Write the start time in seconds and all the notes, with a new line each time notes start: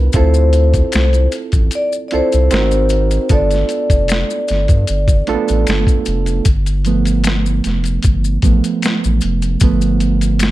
Already playing: B3 D4 F4 A#4 B4
0.12 D2 C4 E4 F4 A4 C5, kick, closed hi-hat, maracas
0.34 maracas
0.53 closed hi-hat, maracas
0.74 kick, closed hi-hat, maracas
0.92 C2, finger snap, snare, closed hi-hat, maracas
1.13 closed hi-hat, maracas
1.32 closed hi-hat, maracas
1.52 A1, kick, closed hi-hat, maracas
1.71 closed hi-hat, maracas
1.75 D5
1.92 maracas
2.08 C4 D5, closed hi-hat
2.13 C2 E4 F4 A4 C5
2.32 C2, closed hi-hat, maracas
2.51 G#1 C4 D#4 F#4 A#4, finger snap, snare, closed hi-hat, maracas
2.71 closed hi-hat, maracas
2.89 closed hi-hat, maracas
3.11 closed hi-hat, maracas
3.29 G1 B3 D4 F4 A4 D5, kick, closed hi-hat, maracas
3.51 snare, closed hi-hat, maracas
3.69 closed hi-hat, maracas
3.90 F1, kick, closed hi-hat, maracas
4.08 finger snap, snare, closed hi-hat, maracas
4.30 maracas
4.48 G1, snare, closed hi-hat, maracas
4.68 G2, kick, closed hi-hat, maracas
4.87 G1, closed hi-hat, maracas
5.08 kick, closed hi-hat, maracas
5.27 A1 A3 D4 F4 A4, closed hi-hat
5.34 B3
5.48 A1, closed hi-hat, maracas
5.67 G1, finger snap, snare, closed hi-hat, maracas
5.87 kick, closed hi-hat, maracas
6.05 F1, closed hi-hat, maracas
6.26 closed hi-hat, maracas
6.45 G1, kick, closed hi-hat, maracas
6.66 closed hi-hat, maracas
6.85 F3 A3 B3, closed hi-hat, maracas
7.05 closed hi-hat, maracas
7.24 finger snap, snare, closed hi-hat, maracas
7.46 maracas
7.64 F1, snare, closed hi-hat, maracas
7.84 closed hi-hat, maracas
8.03 G1, kick, closed hi-hat, maracas
8.24 maracas
8.42 A1 F3 A3 B3, kick, closed hi-hat, maracas
8.64 closed hi-hat, maracas
8.82 finger snap, snare, closed hi-hat, maracas
9.04 A1, maracas
9.21 F1, closed hi-hat, maracas
9.42 closed hi-hat, maracas
9.60 G1 F3 A3 B3, kick, closed hi-hat, maracas
9.81 closed hi-hat, maracas
10.00 closed hi-hat, maracas
10.21 closed hi-hat, maracas
10.39 finger snap, snare, closed hi-hat, maracas